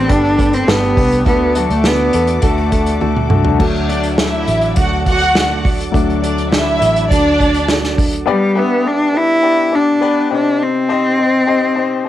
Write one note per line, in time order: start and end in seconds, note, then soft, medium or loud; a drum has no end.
0.00 1.28 G2 medium
0.00 0.08 B3 medium
0.00 0.12 C4 loud
0.00 0.09 D4 medium
0.00 0.09 G4 medium
0.00 0.09 A4 loud
0.00 3.57 A4 medium
0.00 0.97 B4 loud
0.00 3.58 D5 medium
0.00 1.25 G5 medium
0.00 1.25 B5 medium
0.08 0.64 G1 loud
0.08 0.38 A3 medium
0.08 0.31 B3 loud
0.08 0.38 B3 medium
0.08 0.31 D4 medium
0.08 0.37 D4 medium
0.08 0.55 D4 loud
0.08 0.31 G4 medium
0.08 0.36 G4 medium
0.08 0.31 A4 medium
0.08 kick medium
0.08 closed hi-hat medium
0.25 closed hi-hat soft
0.37 0.66 A3 soft
0.37 0.60 B3 medium
0.37 0.67 B3 medium
0.37 0.60 D4 medium
0.37 0.67 D4 medium
0.37 0.67 G4 medium
0.37 0.60 G4 medium
0.37 0.61 A4 medium
0.37 kick medium
0.37 closed hi-hat medium
0.53 0.70 C4 loud
0.53 closed hi-hat medium
0.66 0.95 G1 medium
0.66 0.97 G2 medium
0.66 0.97 D3 medium
0.66 0.97 A3 medium
0.66 0.89 B3 medium
0.66 0.96 B3 medium
0.66 1.27 B3 loud
0.66 0.90 D4 medium
0.66 0.95 D4 medium
0.66 0.90 G4 medium
0.66 0.94 G4 loud
0.66 0.90 A4 medium
0.66 snare loud
0.83 closed hi-hat soft
0.95 1.25 C2 medium
0.95 1.24 A3 soft
0.95 1.18 B3 medium
0.95 1.25 B3 medium
0.95 1.19 D4 medium
0.95 1.24 D4 medium
0.95 1.26 G4 medium
0.95 1.19 G4 medium
0.95 1.19 B4 medium
0.95 kick medium
0.95 open hi-hat medium
1.12 closed hi-hat medium
1.25 1.67 D2 loud
1.25 1.55 D3 medium
1.25 2.10 D3 medium
1.25 1.55 A3 medium
1.25 1.48 A3 medium
1.25 1.58 B3 medium
1.25 1.55 D4 medium
1.25 1.48 D4 medium
1.25 1.54 F#4 medium
1.25 1.48 F#4 medium
1.25 1.53 A4 medium
1.25 1.49 A4 medium
1.25 3.57 F#5 medium
1.25 3.57 D6 medium
1.25 kick medium
1.25 closed hi-hat medium
1.54 1.73 F#3 medium
1.54 1.77 A3 medium
1.54 1.78 D4 medium
1.54 1.83 D4 soft
1.54 1.83 F#4 medium
1.54 1.78 F#4 medium
1.54 1.84 A4 medium
1.54 1.78 A4 medium
1.54 closed hi-hat medium
1.70 2.11 D2 medium
1.70 1.88 A3 loud
1.70 closed hi-hat medium
1.83 2.13 D3 medium
1.83 2.06 A3 medium
1.83 2.14 A3 medium
1.83 2.44 B3 loud
1.83 2.07 D4 medium
1.83 2.14 D4 medium
1.83 2.13 F#4 medium
1.83 2.07 F#4 medium
1.83 2.12 A4 medium
1.83 2.07 A4 medium
1.83 snare loud
2.13 2.41 E2 medium
2.13 2.36 A3 medium
2.13 2.36 D4 medium
2.13 2.42 D4 medium
2.13 2.43 F#4 medium
2.13 2.36 F#4 medium
2.13 2.43 A4 medium
2.13 2.36 A4 medium
2.13 closed hi-hat medium
2.27 closed hi-hat soft
2.42 2.98 D2 loud
2.42 2.64 A3 medium
2.42 2.72 A3 medium
2.42 3.28 A3 medium
2.42 2.65 D4 medium
2.42 2.73 D4 medium
2.42 2.65 F#4 medium
2.42 2.72 F#4 medium
2.42 2.65 A4 loud
2.42 2.70 A4 medium
2.42 kick loud
2.42 closed hi-hat medium
2.58 closed hi-hat soft
2.71 2.93 A3 medium
2.71 2.94 D4 medium
2.71 3.00 D4 medium
2.71 2.94 F#4 medium
2.71 3.01 F#4 medium
2.71 3.01 A4 medium
2.71 2.94 A4 medium
2.71 kick medium
2.71 closed hi-hat medium
2.86 closed hi-hat medium
3.00 3.29 D2 medium
3.00 3.30 D3 medium
3.00 3.23 A3 medium
3.00 3.31 A3 medium
3.00 3.23 D4 medium
3.00 3.31 D4 medium
3.00 3.23 F#4 medium
3.00 3.30 F#4 medium
3.00 3.23 A4 medium
3.00 3.28 A4 medium
3.00 high tom medium
3.16 mid tom medium
3.29 3.58 C2 medium
3.29 3.52 A3 medium
3.29 3.52 D4 medium
3.29 3.59 D4 soft
3.29 3.52 F#4 medium
3.29 3.59 F#4 soft
3.29 3.60 A4 medium
3.29 3.53 A4 medium
3.29 mid tom medium
3.45 floor tom medium
3.59 4.44 D2 medium
3.59 3.89 D3 medium
3.59 5.89 F#3 medium
3.59 5.90 A3 soft
3.59 3.89 A3 medium
3.59 5.90 D4 soft
3.59 3.89 D4 loud
3.59 3.88 F#4 medium
3.59 3.87 A4 medium
3.59 8.24 A4 medium
3.59 8.24 D5 medium
3.59 8.24 F#5 medium
3.59 8.24 D6 medium
3.59 kick loud
3.59 crash medium
3.75 closed hi-hat soft
3.88 4.13 D4 medium
3.88 4.18 D4 soft
3.88 4.18 F#4 medium
3.88 4.18 A4 medium
3.88 4.13 D5 medium
3.88 closed hi-hat medium
4.03 closed hi-hat medium
4.18 4.48 D3 medium
4.18 4.48 A3 medium
4.18 4.48 D4 medium
4.18 4.74 E4 medium
4.18 4.47 F#4 medium
4.18 4.46 A4 medium
4.18 4.74 E5 medium
4.18 snare loud
4.32 closed hi-hat soft
4.47 4.75 A1 medium
4.47 4.76 D4 soft
4.47 4.77 F#4 medium
4.47 4.77 A4 medium
4.47 closed hi-hat medium
4.61 closed hi-hat soft
4.76 5.90 D2 loud
4.76 5.06 A3 medium
4.76 5.06 D4 medium
4.76 5.05 F#4 medium
4.76 5.01 F#4 medium
4.76 5.04 A4 medium
4.76 5.01 F#5 medium
4.76 kick loud
4.76 closed hi-hat loud
5.05 5.35 D4 medium
5.05 5.35 F#4 soft
5.05 5.62 F#4 loud
5.05 5.35 A4 medium
5.05 5.62 F#5 loud
5.05 kick medium
5.05 closed hi-hat medium
5.20 closed hi-hat medium
5.35 5.65 D3 medium
5.35 5.65 A3 medium
5.35 5.65 D4 medium
5.35 5.64 F#4 loud
5.35 5.63 A4 loud
5.35 snare loud
5.64 5.93 D4 medium
5.64 5.94 F#4 medium
5.64 5.94 A4 medium
5.64 kick loud
5.64 open hi-hat medium
5.80 closed hi-hat medium
5.92 6.78 D2 medium
5.92 6.23 D3 medium
5.92 8.22 F#3 soft
5.92 8.23 A3 soft
5.92 6.23 A3 medium
5.92 8.23 D4 medium
5.92 6.23 D4 loud
5.92 6.22 F#4 loud
5.92 6.21 A4 loud
5.92 kick medium
5.92 closed hi-hat medium
6.10 closed hi-hat soft
6.22 6.47 D4 medium
6.22 6.51 D4 medium
6.22 6.51 F#4 medium
6.22 6.52 A4 medium
6.22 6.46 D5 medium
6.22 closed hi-hat medium
6.38 closed hi-hat medium
6.51 6.81 D3 medium
6.51 6.81 A3 medium
6.51 6.81 D4 medium
6.51 7.08 E4 medium
6.51 6.80 F#4 loud
6.51 6.79 A4 medium
6.51 7.08 E5 loud
6.51 snare loud
6.66 closed hi-hat soft
6.80 7.09 A1 medium
6.80 7.09 D4 soft
6.80 7.10 F#4 medium
6.80 7.10 A4 medium
6.80 closed hi-hat medium
6.96 closed hi-hat soft
7.09 8.24 D2 medium
7.09 7.39 A3 medium
7.09 7.94 D4 loud
7.09 7.40 D4 medium
7.09 7.39 F#4 medium
7.09 7.38 A4 medium
7.09 7.94 D5 loud
7.09 kick loud
7.09 closed hi-hat loud
7.39 7.68 D4 soft
7.39 7.68 F#4 medium
7.39 7.68 A4 medium
7.39 kick medium
7.39 closed hi-hat medium
7.54 closed hi-hat medium
7.68 7.98 D3 medium
7.68 7.98 A3 loud
7.68 7.98 D4 medium
7.68 7.98 F#4 loud
7.68 7.96 A4 medium
7.68 snare loud
7.84 snare soft
7.98 8.28 D4 soft
7.98 8.28 F#4 medium
7.98 8.27 A4 medium
7.98 kick loud
7.98 open hi-hat medium
8.13 closed hi-hat medium
8.26 9.11 G2 medium
8.26 8.60 G3 loud
8.26 8.48 B3 medium
8.26 8.49 D4 medium
8.26 8.49 G4 medium
8.26 8.49 B4 medium
8.26 8.49 D5 loud
8.55 8.78 B3 loud
8.55 8.89 B3 loud
8.55 8.78 D4 loud
8.55 8.78 G4 medium
8.55 8.78 B4 loud
8.55 8.79 E5 loud
8.84 9.07 B3 medium
8.84 9.07 D4 medium
8.84 9.18 D4 loud
8.84 9.07 G4 medium
8.84 9.07 B4 medium
8.84 9.08 D5 medium
9.13 9.36 B3 medium
9.13 9.36 D4 medium
9.13 9.76 E4 loud
9.13 9.36 G4 medium
9.13 9.37 B4 medium
9.13 9.37 D5 medium
9.42 9.65 B3 medium
9.42 9.65 D4 medium
9.42 9.66 G4 medium
9.42 9.66 B4 medium
9.42 9.66 D5 medium
9.72 9.94 B3 medium
9.72 9.95 D4 medium
9.72 10.33 D4 loud
9.72 9.95 G4 medium
9.72 9.95 B4 medium
9.72 9.95 D5 medium
10.01 10.24 B3 loud
10.01 10.24 D4 medium
10.01 10.24 G4 loud
10.01 10.24 B4 loud
10.01 10.24 D5 loud
10.30 11.15 C3 medium
10.30 10.78 C4 medium
10.30 10.64 D4 loud
10.30 10.78 D#4 medium
10.30 10.78 G4 medium
10.30 10.78 C5 medium
10.30 10.79 D#5 medium
10.63 12.09 C4 loud
10.89 11.11 C4 loud
10.89 11.11 D#4 loud
10.89 11.12 G4 medium
10.89 11.12 C5 loud
10.89 11.12 D#5 loud
11.18 11.40 C4 medium
11.18 11.41 D#4 medium
11.18 11.41 G4 medium
11.18 11.41 C5 medium
11.18 11.41 D#5 medium
11.47 11.69 C4 medium
11.47 11.70 D#4 medium
11.47 11.70 G4 medium
11.47 11.70 C5 medium
11.47 11.70 D#5 loud
11.75 11.98 C4 medium
11.75 11.99 D#4 medium
11.75 11.99 G4 medium
11.75 11.99 C5 medium
11.75 11.99 D#5 loud
12.05 12.09 C4 medium
12.05 12.09 D#4 medium
12.05 12.09 G4 medium